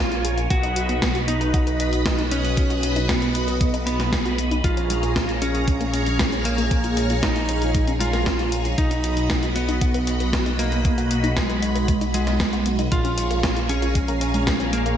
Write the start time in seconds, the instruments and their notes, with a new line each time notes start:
Already playing: detuned saw bass A#1, lead electric guitar F4, string machine F4 A#4 C#5 G#5
0.12 synth arpeggio sound F4, closed hi-hat
0.25 synth arpeggio sound G#4, closed hi-hat
0.38 synth arpeggio sound F4, closed hi-hat
0.50 detuned saw bass B1, synth arpeggio sound B3, lead electric guitar F#4, string machine F#4 B4 D#5 B5, kick, closed hi-hat
0.63 synth arpeggio sound D#4, closed hi-hat
0.76 synth arpeggio sound F#4, closed hi-hat
0.89 synth arpeggio sound B3, closed hi-hat
1.02 synth arpeggio sound B3, kick, snare, closed hi-hat
1.15 synth arpeggio sound F#4, closed hi-hat
1.28 synth arpeggio sound B3, lead electric guitar D#4, closed hi-hat
1.41 synth arpeggio sound D#4, closed hi-hat
1.54 synth arpeggio sound F#4, kick, closed hi-hat
1.67 synth arpeggio sound B4, closed hi-hat
1.80 synth arpeggio sound D#5, closed hi-hat
1.93 synth arpeggio sound B4, closed hi-hat
2.06 synth arpeggio sound B3, kick, snare, closed hi-hat
2.19 synth arpeggio sound D#4, closed hi-hat
2.31 lead electric guitar C#4, synth arpeggio sound F#4, closed hi-hat
2.44 synth arpeggio sound B3, closed hi-hat
2.57 synth arpeggio sound B3, kick, closed hi-hat
2.70 synth arpeggio sound F#4, closed hi-hat
2.83 synth arpeggio sound B3, closed hi-hat
2.96 synth arpeggio sound D#4, closed hi-hat
3.09 lead electric guitar B3, synth arpeggio sound F#4, kick, snare, closed hi-hat
3.22 synth arpeggio sound B4, closed hi-hat
3.35 synth arpeggio sound D#5, closed hi-hat
3.48 synth arpeggio sound B4, closed hi-hat
3.61 synth arpeggio sound B3, kick, closed hi-hat
3.74 synth arpeggio sound D#4, closed hi-hat
3.87 lead electric guitar B3, synth arpeggio sound F#4, closed hi-hat
4.00 synth arpeggio sound B3, snare, closed hi-hat
4.12 synth arpeggio sound B3, kick, snare, closed hi-hat
4.25 synth arpeggio sound F#4, closed hi-hat
4.38 synth arpeggio sound B3, closed hi-hat
4.51 synth arpeggio sound D#4, closed hi-hat
4.64 detuned saw bass A#1, synth arpeggio sound G#3, lead electric guitar F4, string machine G#4 C#5 F5 A#5, kick, closed hi-hat
4.77 synth arpeggio sound C#4, closed hi-hat
4.90 synth arpeggio sound G#3, closed hi-hat
5.03 synth arpeggio sound A#3, closed hi-hat
5.16 synth arpeggio sound C#4, kick, snare, closed hi-hat
5.29 synth arpeggio sound F4, closed hi-hat
5.42 lead electric guitar C#4, synth arpeggio sound G#4, closed hi-hat
5.55 synth arpeggio sound F4, closed hi-hat
5.68 synth arpeggio sound G#3, kick, closed hi-hat
5.81 synth arpeggio sound A#3, closed hi-hat
5.94 synth arpeggio sound C#4, closed hi-hat
6.06 synth arpeggio sound G#3, closed hi-hat
6.19 synth arpeggio sound G#3, kick, snare, closed hi-hat
6.32 synth arpeggio sound C#4, closed hi-hat
6.45 synth arpeggio sound G#3, lead electric guitar A#3, closed hi-hat
6.58 synth arpeggio sound A#3, closed hi-hat
6.71 synth arpeggio sound C#4, kick, closed hi-hat
6.84 synth arpeggio sound F4, closed hi-hat
6.97 synth arpeggio sound G#4, closed hi-hat
7.10 synth arpeggio sound F4, closed hi-hat
7.23 synth arpeggio sound G#3, lead electric guitar D#4, kick, snare, closed hi-hat
7.36 synth arpeggio sound A#3, closed hi-hat
7.49 synth arpeggio sound C#4, closed hi-hat
7.62 synth arpeggio sound G#3, closed hi-hat
7.75 synth arpeggio sound G#3, kick, closed hi-hat
7.87 synth arpeggio sound C#4, closed hi-hat
8.00 synth arpeggio sound G#3, lead electric guitar F4, closed hi-hat
8.13 synth arpeggio sound A#3, snare, closed hi-hat
8.26 synth arpeggio sound C#4, kick, snare, closed hi-hat
8.39 synth arpeggio sound F4, closed hi-hat
8.52 synth arpeggio sound G#4, closed hi-hat
8.65 synth arpeggio sound F4, closed hi-hat
8.78 detuned saw bass B1, synth arpeggio sound B3, lead electric guitar D#4, string machine F#4 D#5 B5, kick, closed hi-hat
8.91 synth arpeggio sound D#4, closed hi-hat
9.04 synth arpeggio sound F#4, closed hi-hat
9.17 synth arpeggio sound B3, closed hi-hat
9.30 synth arpeggio sound B3, kick, snare, closed hi-hat
9.43 synth arpeggio sound F#4, closed hi-hat
9.56 lead electric guitar B3, synth arpeggio sound B3, closed hi-hat
9.69 synth arpeggio sound D#4, closed hi-hat
9.81 synth arpeggio sound F#4, kick, closed hi-hat
9.94 synth arpeggio sound B4, closed hi-hat
10.07 synth arpeggio sound D#5, closed hi-hat
10.20 synth arpeggio sound B4, closed hi-hat
10.33 synth arpeggio sound B3, kick, snare, closed hi-hat
10.46 synth arpeggio sound D#4, closed hi-hat
10.59 lead electric guitar A#3, synth arpeggio sound F#4, closed hi-hat
10.72 synth arpeggio sound B3, closed hi-hat
10.85 synth arpeggio sound B3, kick, closed hi-hat
10.98 synth arpeggio sound F#4, closed hi-hat
11.11 synth arpeggio sound B3, closed hi-hat
11.24 synth arpeggio sound D#4, closed hi-hat
11.37 lead electric guitar G#3, synth arpeggio sound F#4, kick, snare, closed hi-hat
11.50 synth arpeggio sound B4, closed hi-hat
11.62 synth arpeggio sound D#5, closed hi-hat
11.75 synth arpeggio sound B4, closed hi-hat
11.88 synth arpeggio sound B3, kick, closed hi-hat
12.01 synth arpeggio sound D#4, closed hi-hat
12.14 lead electric guitar G#3, synth arpeggio sound F#4, closed hi-hat
12.27 synth arpeggio sound B3, snare, closed hi-hat
12.40 synth arpeggio sound B3, kick, snare, closed hi-hat
12.53 synth arpeggio sound F#4, closed hi-hat
12.66 synth arpeggio sound B3, closed hi-hat
12.79 synth arpeggio sound D#4, closed hi-hat
12.92 synth arpeggio sound G#3, lead electric guitar F4, string machine G#4 C#5 F5 A#5, kick, closed hi-hat
13.05 synth arpeggio sound C#4, closed hi-hat
13.18 synth arpeggio sound G#3, closed hi-hat
13.31 synth arpeggio sound A#3, closed hi-hat
13.43 synth arpeggio sound C#4, kick, snare, closed hi-hat
13.56 synth arpeggio sound F4, closed hi-hat
13.69 lead electric guitar C#4, synth arpeggio sound G#4, closed hi-hat
13.82 synth arpeggio sound F4, closed hi-hat
13.95 synth arpeggio sound G#3, kick, closed hi-hat
14.08 synth arpeggio sound A#3, closed hi-hat
14.21 synth arpeggio sound C#4, closed hi-hat
14.34 synth arpeggio sound G#3, closed hi-hat
14.47 synth arpeggio sound G#3, kick, snare, closed hi-hat
14.60 synth arpeggio sound C#4, closed hi-hat
14.73 synth arpeggio sound G#3, lead electric guitar A#3, closed hi-hat
14.86 synth arpeggio sound A#3, closed hi-hat